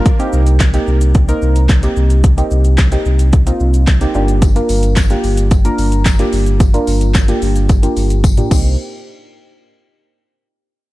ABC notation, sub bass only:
X:1
M:4/4
L:1/8
Q:1/4=110
K:Cm
V:1 name="Sub bass" clef=bass
z C,,2 C,,2 C,,2 C,,- | C,, C,,2 C,,2 C,,2 G,,,- | G,,, G,,,2 G,,,2 G,,,2 G,,,- | G,,, G,,,2 G,,,2 G,,,2 C,, |
z8 |]